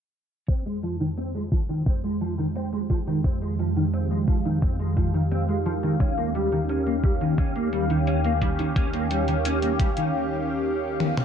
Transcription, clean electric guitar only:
0.48 C4
0.66 G#3
0.83 F3
1.00 D#3
1.18 C4
1.35 G#3
1.52 F3
1.69 D#3
1.86 C4
2.04 G#3
2.21 F3
2.38 D#3
2.55 C4
2.73 G#3
2.90 F3
3.07 D#3
3.24 C4
3.42 G#3
3.59 F3
3.76 D#3
3.93 C4
4.11 G#3
4.28 F3
4.45 D#3
4.62 C4
4.80 G#3
4.97 F3
5.14 D#3
5.31 C4
5.49 G#3
5.66 F3
5.83 D#3
6.00 C#4
6.18 A#3
6.35 G3
6.52 D#3
6.69 C#4
6.87 A#3
7.04 G3
7.21 D#3
7.39 C#4
7.56 A#3
7.73 G3
7.90 D#3
8.07 C#4
8.25 A#3
8.42 G3
8.59 D#3
8.76 C#4
8.93 A#3
9.11 G3
9.28 D#3
9.45 C#4
9.62 A#3
9.80 G3
9.97 D#3

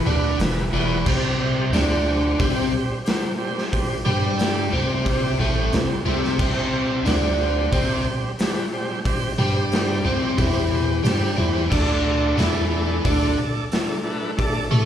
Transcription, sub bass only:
0.07 D2
0.39 E1
0.73 E1
1.06 C2
1.73 D2
2.40 C2
4.06 G2
4.73 C2
5.40 A1
5.73 C2
6.07 C2
6.39 C2
7.06 D2
7.73 C2
9.39 G2
10.05 C2
10.39 E2
11.05 G2
11.38 E2
11.72 D2
12.38 E2
13.05 D2
14.72 A2

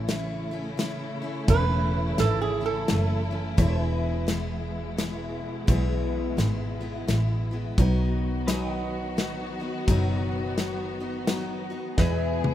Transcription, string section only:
Already playing: C#3 E3 A3 E4
3.58 B2 G#3
7.77 D#3 F#3 B3 F#4
11.97 G#3 E4 G#4

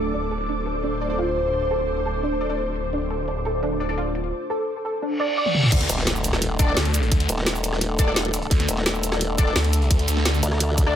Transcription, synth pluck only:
0.14 D4
0.31 A4
0.49 D4
0.66 A4
0.84 D4
1.19 F4
1.71 A4
2.06 A4
2.23 D4
2.93 D4
3.10 A4
3.28 D4
3.45 A4
3.63 D4
3.98 F4
4.50 A4
4.85 A4
5.02 D4
5.20 D5
5.37 D5

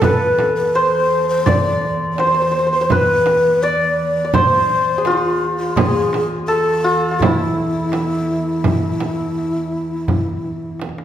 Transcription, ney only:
0.02 B4
0.56 B4
0.75 C5
1.29 C5
1.48 D5
2.12 D5
2.19 C5
2.73 C5
2.91 B4
3.63 D5
4.35 C5
5.07 F4
5.12 E4
5.18 F4
5.58 F4
5.77 G#4
6.48 A4
7.20 E4

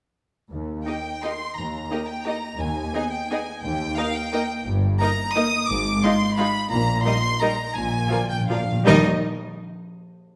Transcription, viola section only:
0.88 A#3 D#4
1.23 A#3 D#4
1.91 A#3 D#4
2.26 A#3 D#4
2.95 B3 D#4
3.31 B3 D#4
3.98 A#3 D#4
4.33 A#3 D#4
5.01 A#3 D#4
5.36 A#3 D#4
6.04 G#3 D#4
6.38 G#3 D#4
7.06 G3 D#4
7.42 G3 D#4
8.10 F3 F4
8.49 F3 F4
8.86 G3 D#4

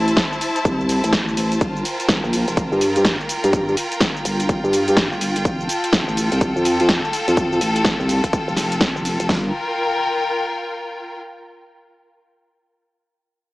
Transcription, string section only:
Already playing: E4 C5 A5
1.61 F4
1.75 G5
1.80 A#4
5.63 A4
9.29 F4
9.38 A#4
9.46 G5

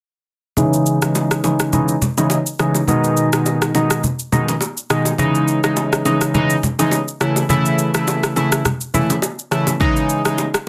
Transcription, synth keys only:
0.57 C#3 E3 G#3 D#4
1.02 C#3 E3 G#3 D#4
1.44 C#3 E3 G#3 D#4
1.73 C#3 E3 G#3 D#4
2.17 C#3 E3 G#3 D#4
2.59 C#3 E3 G#3 D#4
2.88 B2 D#3 G#3 D#4
3.33 B2 D#3 G#3 D#4
3.75 B2 D#3 G#3 D#4
4.32 B2 D#3 G#3 D#4
4.90 B2 D#3 G#3 D#4
5.19 C#3 E3 G#3 D#4
5.63 C#3 E3 G#3 D#4
6.05 C#3 E3 G#3 D#4
6.34 C#3 E3 G#3 D#4
6.79 C#3 E3 G#3 D#4
7.21 C#3 E3 A3 E4
7.49 C#3 E3 A3 E4
7.94 C#3 E3 A3 E4
8.36 C#3 E3 A3 E4
8.94 C#3 E3 A3 E4
9.51 C#3 E3 A3 E4
9.80 C#3 E3 G#3 D#4
10.25 C#3 E3 G#3 D#4

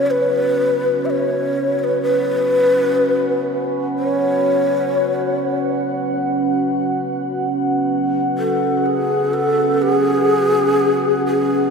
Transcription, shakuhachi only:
0.06 C#5
0.11 B4
1.05 E5
1.10 C#5
1.79 C#5
1.84 B4
2.03 B4
3.99 C#5
8.38 A4
8.86 G#4
9.34 A4
9.82 G#4
11.26 G#4

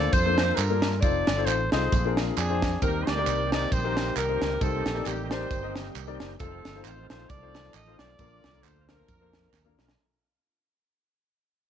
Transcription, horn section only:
Already playing: F4 A4 D5
0.12 F4 A4 C5
0.56 D4 F4 A#4
1.00 A4 D5
1.46 C5
1.72 F4 G#4 C5
2.37 C4 D4 G#4
2.83 G4 A#4
3.07 G4 A#4 D5
3.52 D5
3.72 G4 C5
4.17 G4 A#4
4.62 D#4 A4
5.06 G4
5.32 D#4 G4 C5
6.40 C4 D#4 A4
6.84 C5
7.08 C5
7.29 A4 D5
7.75 D#5
7.99 F4 A4 D5
8.64 C5
8.89 D4 F4 A#4

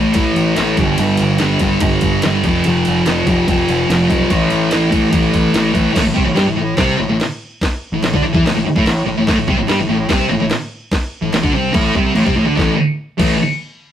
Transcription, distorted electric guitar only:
Already playing: A2 E3 A3
0.15 A2 E3 A3
0.56 A2 E3 A3
0.78 G2 D3 G3
0.99 G2 D3 G3
1.39 G2 D3 G3
1.61 G2 D3 G3
1.81 G2 D3 G3
2.24 G2 D3 G3
2.45 F2 C3 F3
2.66 F2 C3 F3
3.06 F2 C3 F3
3.27 F2 C3 F3
3.48 F2 C3 F3
3.90 F2 C3 F3
4.09 F2 C3 F3
4.29 A2 E3 A3
4.71 A2 E3 A3
4.91 A2 E3 A3
5.11 A2 E3 A3
5.54 A2 E3 A3
5.73 A2 E3 A3
5.94 A2 A3
6.04 A2
6.14 C3 C4
6.26 A2
6.35 G3 G4
6.45 A2
6.57 A2
6.78 C3 C4
6.98 A2
7.10 A2
7.94 A2
8.04 A2
8.14 D3 D4
8.24 A2
8.34 E3 E4
8.46 A2
8.56 A2
8.65 muted distorted electric guitar stroke
8.76 A2 A3
8.86 A2
9.06 A2
9.18 A2
9.28 A2 A3
9.39 A2
9.48 C3 C4
9.58 A2
9.68 G3 G4
9.79 A2
9.89 A2
10.09 C3 C4
10.30 A2
10.41 A2
11.22 A2
11.33 A2
11.44 D3 D4
11.54 C3 C4
11.74 A2 A3
11.96 C3 C4
12.14 A2 A3
12.25 C3 C4
12.36 A2 A3
12.46 D3 D4
12.57 A2 E3 A3
13.18 A2 E3 A3

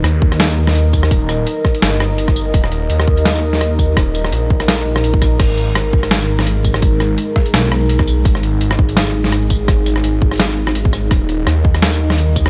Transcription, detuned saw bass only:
0.04 D#2
1.11 D#1
1.83 G1
2.54 D#1
2.90 D#2
3.97 D#1
4.32 A#1
4.86 A#1
5.40 G#1
5.75 G#1
6.82 G#1
7.54 B1
8.25 G#1
8.61 G#1
9.68 G#1
10.04 G#1
10.75 G#1
11.11 D#1
11.47 D#2

